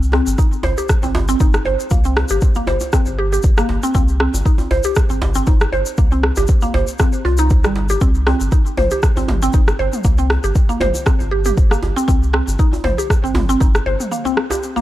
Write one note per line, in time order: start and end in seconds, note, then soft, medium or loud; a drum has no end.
0.00 0.20 C2 loud
0.00 shaker soft
0.12 0.26 C4 medium
0.12 cross-stick medium
0.12 djembe tone medium
0.27 0.35 G1 loud
0.27 shaker medium
0.38 0.46 D#4 medium
0.38 kick loud
0.38 djembe tone medium
0.38 shaker medium
0.52 shaker soft
0.63 0.73 G1 medium
0.63 0.71 C5 medium
0.63 djembe slap loud
0.63 djembe bass medium
0.78 0.88 G4 medium
0.78 djembe tone medium
0.78 shaker medium
0.89 kick loud
0.89 cross-stick medium
0.89 shaker medium
1.03 1.34 G1 loud
1.03 1.14 C4 medium
1.03 djembe tone loud
1.03 shaker soft
1.15 djembe slap loud
1.15 djembe bass loud
1.28 1.39 C4 loud
1.28 djembe tone medium
1.28 shaker medium
1.40 1.59 G1 loud
1.40 1.48 D#4 medium
1.40 kick loud
1.40 shaker medium
1.53 cross-stick medium
1.53 shaker soft
1.65 1.75 G1 medium
1.65 1.73 C5 medium
1.65 djembe tone medium
1.80 shaker medium
1.90 2.24 C2 loud
1.90 2.04 A#3 medium
1.90 kick loud
1.90 djembe tone medium
1.90 shaker medium
2.04 2.15 C4 medium
2.04 shaker soft
2.16 cross-stick medium
2.16 djembe tone medium
2.29 2.38 G1 loud
2.29 2.37 G4 medium
2.29 shaker medium
2.41 kick loud
2.41 shaker medium
2.55 2.66 A#3 loud
2.55 djembe tone medium
2.55 shaker soft
2.67 2.77 G1 medium
2.67 2.75 C5 medium
2.67 djembe slap loud
2.67 djembe bass medium
2.80 djembe tone medium
2.80 shaker medium
2.93 3.06 C4 medium
2.93 kick loud
2.93 cross-stick medium
2.93 shaker medium
3.06 3.38 G1 loud
3.06 djembe tone medium
3.06 shaker soft
3.18 3.26 G4 medium
3.32 3.39 G4 medium
3.32 shaker medium
3.43 3.62 G1 loud
3.43 kick loud
3.43 djembe tone medium
3.43 shaker medium
3.57 3.68 A#3 loud
3.57 cross-stick medium
3.57 shaker soft
3.69 3.79 G1 medium
3.69 djembe slap medium
3.69 djembe tone loud
3.83 3.93 C4 loud
3.83 shaker medium
3.94 4.27 C2 loud
3.94 4.02 C4 loud
3.94 kick loud
3.94 djembe tone medium
3.94 shaker medium
4.08 shaker soft
4.20 4.32 C4 medium
4.20 cross-stick medium
4.33 4.42 G1 loud
4.33 djembe tone medium
4.33 shaker medium
4.45 4.53 D#4 medium
4.45 kick loud
4.45 shaker medium
4.58 djembe tone loud
4.58 shaker soft
4.70 4.80 G1 medium
4.70 4.78 C5 medium
4.70 djembe slap loud
4.70 djembe bass medium
4.83 4.95 G4 medium
4.83 djembe tone medium
4.83 shaker medium
4.95 kick loud
4.95 cross-stick medium
4.95 shaker medium
5.10 5.41 G1 loud
5.10 5.20 C4 medium
5.10 shaker soft
5.21 djembe slap loud
5.21 djembe tone medium
5.21 djembe bass medium
5.35 5.46 C4 loud
5.35 shaker medium
5.47 5.66 G1 loud
5.47 5.55 D#4 medium
5.47 kick loud
5.47 djembe tone loud
5.47 shaker medium
5.60 cross-stick medium
5.60 shaker soft
5.72 5.82 G1 medium
5.72 5.80 C5 medium
5.72 djembe tone medium
5.86 shaker medium
5.97 6.31 C2 loud
5.97 6.11 A#3 medium
5.97 kick loud
5.97 shaker medium
6.12 6.22 C4 medium
6.12 djembe tone medium
6.12 shaker soft
6.23 cross-stick medium
6.36 6.45 G1 loud
6.36 6.43 G4 medium
6.36 djembe slap medium
6.36 djembe tone medium
6.36 shaker medium
6.47 kick loud
6.47 shaker medium
6.61 6.73 A#3 loud
6.61 djembe tone medium
6.61 shaker soft
6.74 6.84 G1 medium
6.74 6.82 C5 medium
6.74 djembe slap loud
6.74 djembe bass medium
6.87 shaker medium
6.99 7.13 C4 medium
6.99 kick loud
6.99 cross-stick medium
6.99 djembe tone medium
6.99 shaker medium
7.13 shaker soft
7.25 7.66 C2 loud
7.25 7.38 F4 loud
7.25 djembe tone medium
7.38 7.50 D#4 loud
7.38 shaker medium
7.50 kick loud
7.50 djembe tone medium
7.50 shaker medium
7.64 7.96 G1 medium
7.64 7.75 G3 medium
7.64 cross-stick medium
7.64 shaker soft
7.76 djembe slap medium
7.89 8.01 G4 medium
7.89 djembe tone medium
7.89 shaker medium
8.01 8.34 C2 loud
8.01 8.09 C4 loud
8.01 kick loud
8.01 djembe tone medium
8.01 shaker medium
8.15 shaker soft
8.27 8.39 C4 medium
8.27 cross-stick medium
8.27 djembe tone medium
8.40 8.49 G1 loud
8.40 shaker medium
8.51 8.60 D#4 medium
8.51 kick loud
8.51 djembe tone medium
8.51 shaker medium
8.66 shaker soft
8.77 8.87 G1 medium
8.77 8.85 C5 medium
8.77 mid tom medium
8.77 djembe slap medium
8.77 djembe bass medium
8.91 9.02 G4 medium
8.91 djembe tone medium
8.91 shaker medium
9.03 kick loud
9.03 cross-stick medium
9.03 shaker medium
9.17 9.48 G1 loud
9.17 9.27 C4 medium
9.17 djembe tone medium
9.17 shaker soft
9.28 mid tom medium
9.28 djembe slap loud
9.28 djembe bass medium
9.42 9.53 C4 loud
9.42 djembe tone medium
9.42 shaker medium
9.53 9.72 G1 loud
9.53 9.61 D#4 medium
9.53 kick loud
9.53 shaker medium
9.68 cross-stick medium
9.68 shaker soft
9.79 9.89 G1 medium
9.79 9.87 C5 medium
9.79 djembe tone medium
9.93 mid tom medium
9.93 shaker medium
10.04 10.37 C2 loud
10.04 10.18 A#3 medium
10.04 kick loud
10.04 djembe tone medium
10.04 shaker medium
10.18 10.29 C4 medium
10.18 shaker soft
10.30 cross-stick medium
10.30 djembe tone medium
10.43 10.52 G1 loud
10.43 10.50 G4 medium
10.43 shaker medium
10.55 kick loud
10.55 shaker medium
10.69 10.80 A#3 loud
10.69 djembe tone medium
10.69 shaker soft
10.80 10.91 G1 medium
10.80 10.88 C5 medium
10.80 mid tom medium
10.80 djembe slap loud
10.80 djembe bass medium
10.94 djembe tone medium
10.94 shaker medium
11.06 11.19 C4 medium
11.06 kick loud
11.06 cross-stick medium
11.06 shaker medium
11.20 11.51 G1 loud
11.20 djembe tone medium
11.20 shaker soft
11.31 11.39 G4 medium
11.45 11.52 G4 medium
11.45 mid tom medium
11.45 shaker medium
11.57 11.76 G1 loud
11.57 kick loud
11.57 djembe tone medium
11.57 shaker medium
11.71 11.81 A#3 loud
11.71 cross-stick medium
11.71 shaker soft
11.82 11.92 G1 medium
11.82 djembe slap medium
11.82 djembe tone medium
11.96 12.06 C4 loud
11.96 shaker medium
12.08 12.41 C2 loud
12.08 12.15 C4 loud
12.08 kick loud
12.08 djembe tone medium
12.08 shaker medium
12.23 shaker soft
12.33 12.46 C4 medium
12.33 cross-stick medium
12.47 12.55 G1 loud
12.47 djembe tone medium
12.47 shaker medium
12.59 12.66 D#4 medium
12.59 kick loud
12.59 shaker medium
12.73 djembe tone medium
12.73 shaker soft
12.84 12.94 G1 medium
12.84 12.92 C5 medium
12.84 mid tom medium
12.84 djembe slap loud
12.84 djembe bass medium
12.98 13.09 G4 medium
12.98 djembe tone medium
12.98 shaker medium
13.10 kick loud
13.10 cross-stick medium
13.10 shaker medium
13.23 13.55 G1 loud
13.23 13.34 C4 medium
13.23 shaker soft
13.34 mid tom medium
13.34 djembe slap loud
13.34 djembe tone medium
13.34 djembe bass loud
13.49 13.59 C4 loud
13.49 shaker medium
13.60 13.79 G1 loud
13.60 13.68 D#4 medium
13.60 kick loud
13.60 djembe tone medium
13.60 shaker medium
13.75 cross-stick medium
13.75 shaker soft
13.86 13.96 G1 medium
13.86 13.94 C5 medium
13.86 djembe tone medium
14.00 mid tom medium
14.00 shaker medium
14.11 14.25 A#3 medium
14.11 shaker medium
14.25 14.36 C4 medium
14.25 djembe tone medium
14.25 shaker soft
14.37 cross-stick medium
14.50 14.57 G4 medium
14.50 djembe slap medium
14.50 djembe tone medium
14.50 shaker medium
14.63 shaker medium
14.76 14.81 A#3 loud
14.76 djembe tone medium
14.76 shaker soft